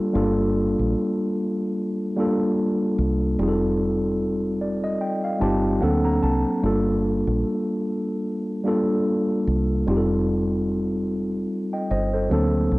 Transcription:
Already playing: G3 A#3 D4 F4 A4
0.13 G1 G3 A#3 D4 F4 A4
0.79 A#1
2.16 G3 A#3 D4 F4 A4
2.99 C2
3.39 F1 G3 C4 D#4 F4 G#4
3.49 A4
4.61 D5
4.84 D#5
5.01 G5
5.24 F5
5.40 G1 G3 C4 D#4 F4 G4 A5
5.80 D2 F#3 A#3 C4 D4 A4 F#5
6.05 A#5
6.23 C2 A5
6.62 G1 G3 A#3 D4 F4 A4
7.27 A#1
8.64 G3 A#3 D4 F4 A4
9.47 C2
9.87 F1 G3 C4 D#4 F4 G4
9.97 A4
11.73 D#5 G5
11.91 G1 C5 D#5
12.13 A4 C5
12.29 D2 F#3 A#3 C4 D4 A4
12.72 C2

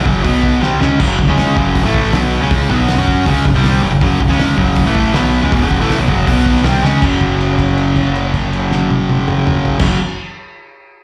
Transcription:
0.05 F#1 F#2 C#3 F#3, kick
0.23 B1 B2 F#3 B3, kick, open hi-hat
0.43 kick
0.61 C2 C3 G3 C4, snare
0.80 C#2 C#3 G#3 C#4, snare
0.99 F#1 F#2 C#3 F#3, kick, crash
1.18 F#1 F#2 C#3, kick
1.28 C#2 C#3 G#3 C#4
1.38 snare, open hi-hat
1.56 F#1 F#2 C#3 F#3, kick
1.75 kick, open hi-hat
1.83 A1 A2 E3 A3
1.94 kick
2.05 snare
2.13 B1 B2 F#3 B3, snare, open hi-hat
2.41 C#2 C#3 G#3 C#4
2.51 kick, open hi-hat
2.69 B1 B2 F#3 B3, kick
2.88 snare, open hi-hat
2.97 F#2 F#3 C#4 F#4
3.08 kick
3.26 C#2 C#3 G#3 C#4, kick, open hi-hat
3.45 F#1 F#2 C#3, kick
3.54 C2 C3 G3 C4, snare
3.64 snare, open hi-hat
3.82 F#1 F#2 C#3
3.91 F#1 F#2 C#3
4.01 F#1 F#2 C#3 F#3, kick, open hi-hat
4.20 F#1 F#2 C#3, kick
4.28 C#2 C#3 G#3 C#4, snare
4.39 snare, open hi-hat
4.56 F#1 F#2 C#3 F#3, kick
4.75 kick, open hi-hat
4.86 A1 A2 E3 A3
4.95 kick
5.13 B1 B2 F#3 B3, snare, open hi-hat
5.43 C#2 C#3 G#3
5.52 E1 E2 B2, kick, open hi-hat
5.61 F#1 F#2 C#3 F#3
5.71 kick
5.79 A1 A2 E3 A3, snare
5.90 snare, open hi-hat
5.98 B1 B2 F#3
6.08 F#1 F#2 C#3 F#3, kick
6.27 B1 B2 F#3 B3, kick, open hi-hat
6.46 kick
6.56 snare
6.63 C2 C3 G3 C4, snare, open hi-hat
6.82 C#2 C#3 G#3 C#4, snare
7.01 F#1 F#2 C#3, kick, crash
7.05 F#3
7.21 kick, crash
7.41 crash
7.59 kick, crash
7.77 crash
7.96 kick, crash
8.15 crash
8.34 kick, crash
8.53 crash
8.71 snare
8.91 high tom
9.09 high tom
9.28 mid tom
9.47 mid tom
9.65 floor tom
9.79 F#1 F#2 C#3 F#3, kick, snare, crash

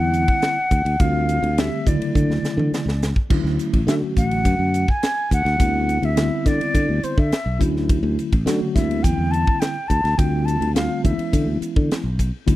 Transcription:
Already playing: D3 G3 A#3 C4 E4 F#5
0.00 E2
0.14 hi-hat pedal, ride
0.28 kick, ride
0.42 snare, hi-hat pedal, ride
0.71 D2, kick, hi-hat pedal, ride
0.85 D2, ride
1.00 D2 D3 G3 A3 C4 F4 F5, kick, hi-hat pedal, ride
1.29 hi-hat pedal, ride
1.43 D2, ride
1.57 D3 G3 A3 C4 G4 E5, snare, hi-hat pedal, ride
1.86 D2 C#3 D3 F#3 A3 E4 D5, kick, hi-hat pedal, ride
2.01 muted fingered electric bass stroke, ride
2.15 D3, kick, hi-hat pedal
2.29 D2, snare
2.43 muted fingered electric bass stroke, snare, hi-hat pedal
2.57 D3, mid tom
2.71 muted fingered electric bass stroke, snare, hi-hat pedal
2.86 C#2, snare
3.02 snare, hi-hat pedal
3.16 kick
3.30 D2 D3 F#3 A3 C#4 E4, kick, crash
3.44 D2, snare
3.59 hi-hat pedal, ride
3.73 A1, kick, ride
3.87 D3 F#3 A3 C#4 F#4 E5, snare, hi-hat pedal, ride
4.02 muted fingered electric bass stroke
4.17 A1 F#5, kick, hi-hat pedal, ride
4.31 ride
4.45 F#2, kick, hi-hat pedal, ride
4.59 F#2
4.74 hi-hat pedal, ride
4.88 G#5, kick
5.03 snare, hi-hat pedal, ride
5.31 D2 F#5, kick, hi-hat pedal, ride
5.45 D2, snare, ride
5.58 D2 D3 G3 B3 C4 E4, kick, hi-hat pedal, ride
5.89 hi-hat pedal, ride
6.03 D2 E5, ride
6.16 D3 G3 B3 C4 E4, snare, hi-hat pedal, ride
6.46 D3 D5, kick, snare, hi-hat pedal, ride
6.60 muted fingered electric bass stroke, ride
6.74 D3, kick, hi-hat pedal, ride
6.89 D2
7.03 C5, muted fingered electric bass stroke, hi-hat pedal, ride
7.18 D3 E5, kick
7.31 muted fingered electric bass stroke, snare, hi-hat pedal, ride
7.46 B1
7.59 D2 D3 F#3 A3 C#4 E4, kick, hi-hat pedal, ride
7.76 snare
7.89 kick, hi-hat pedal, ride
8.03 D2
8.19 hi-hat pedal, ride
8.33 A1, kick, ride
8.46 D3 F#3 A3 C#4 F#4, snare, hi-hat pedal, ride
8.61 muted fingered electric bass stroke
8.75 D2 D3 G3 A#3 C4 E4 E5, kick, snare, hi-hat pedal, ride
8.91 ride
9.03 E2 G5, kick, hi-hat pedal, ride
9.18 E2
9.31 A5, hi-hat pedal, ride
9.47 kick
9.60 G5, snare, hi-hat pedal, ride
9.88 D2 A5, kick, hi-hat pedal, ride
10.04 D2, snare, ride
10.18 D2 D3 G3 A3 C4 F4 G5, kick, hi-hat pedal, ride
10.45 A5, hi-hat pedal, ride
10.61 D2, ride
10.74 D3 G3 A3 C4 F4 F5, snare, hi-hat pedal, ride
11.04 D2 E3 G#3 B3 C#4 E4 E5, kick, hi-hat pedal, ride
11.18 muted fingered electric bass stroke, ride
11.33 D3, kick, hi-hat pedal, ride
11.46 D2
11.61 muted fingered electric bass stroke, hi-hat pedal, ride
11.76 D3, kick
11.89 muted fingered electric bass stroke, snare, hi-hat pedal, ride
12.04 B1
12.19 kick, hi-hat pedal, ride
12.46 D2 D3 F#3 A3 C#4 E4, kick, hi-hat pedal, ride

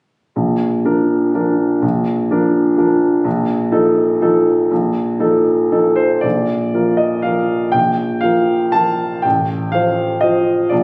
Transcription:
0.36 A#1
0.85 F3 D4 A#4
1.34 F3 D4 A#4
1.82 A#1
2.31 F3 D4 A#4
2.78 F3 D4 A#4
3.24 A#1
3.72 F3 D#4 A4
4.22 F3 D#4 A4
4.71 A#1
5.20 F3 D#4 A4
5.72 F3 D#4 A4
5.96 C5
6.21 A#1 D5
6.74 F3 F4 A#4
6.97 D#5
7.22 F3 F4 A#4 F5
7.72 A#1 G5
8.21 F3 F4 A#4 F5
8.72 F3 F4 A#4 A5
9.22 A1 G5
9.72 F3 F4 C5 F5
10.21 F3 F4 C5 D#5
10.69 A#1 D5

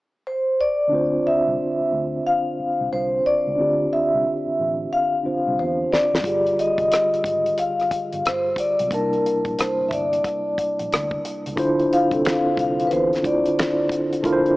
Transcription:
0.27 C5
0.61 D5
0.88 D3 C4 D4
0.93 D2 F4 C5
1.27 E5
1.47 C2
1.81 muted fingered electric bass stroke
1.93 D2
2.27 F5
2.60 muted fingered electric bass stroke
2.81 C2
2.93 C2 C5
3.26 D5
3.47 C#2
3.54 D3 C4 D4
3.59 D2 F4 G4
3.93 E5
4.14 C2
4.47 muted fingered electric bass stroke
4.59 A1
4.93 F5
5.22 D3 C4 D4 F4 C5
5.26 muted fingered electric bass stroke
5.47 C2
5.59 E2 C5
5.93 D5, snare
6.14 F#1, snare
6.21 D3 G3 F4, kick
6.25 G1 G4 G#4, closed hi-hat
6.46 closed hi-hat
6.59 D#5, closed hi-hat
6.78 F1, kick, closed hi-hat
6.92 cross-stick, closed hi-hat
7.14 muted fingered electric bass stroke, closed hi-hat
7.24 G#1, kick, closed hi-hat
7.46 closed hi-hat
7.58 F5, closed hi-hat
7.80 cross-stick, closed hi-hat
7.91 muted fingered electric bass stroke, kick, closed hi-hat
8.13 G1, closed hi-hat
8.26 G1 C5, cross-stick, closed hi-hat
8.56 D5, kick, closed hi-hat
8.79 B1, closed hi-hat
8.87 C3 G3 A#3, kick
8.92 C2 D4 D#4 A#4 A5, closed hi-hat
9.00 E4
9.13 closed hi-hat
9.26 closed hi-hat
9.45 A#1, kick, closed hi-hat
9.59 C5, cross-stick, closed hi-hat
9.81 muted fingered electric bass stroke
9.89 G1 E5, kick, closed hi-hat
9.93 D5
10.13 closed hi-hat
10.24 kick, cross-stick, closed hi-hat
10.58 muted fingered electric bass stroke, kick, closed hi-hat
10.79 A#1, closed hi-hat
10.92 D2, cross-stick, closed hi-hat
11.11 kick
11.25 closed hi-hat
11.46 C#2, closed hi-hat
11.56 D2 D3 D4 E4 F4 C5, kick, closed hi-hat
11.80 closed hi-hat
11.93 F5, closed hi-hat
12.11 C2 D3 C4 D4 F4 A4, kick, closed hi-hat
12.25 finger snap, snare, closed hi-hat
12.57 C2 F5, kick, closed hi-hat
12.80 closed hi-hat
12.87 B4, closed hi-hat
12.93 E2 C5
13.13 snare, closed hi-hat
13.22 D2 D3 D4 E4 F4 C5 D5, kick, closed hi-hat
13.46 closed hi-hat
13.59 finger snap, snare, closed hi-hat
13.89 kick, closed hi-hat
14.13 closed hi-hat
14.22 D2 D3 D4 E4 F4 A#4, kick, closed hi-hat
14.33 C5
14.46 closed hi-hat

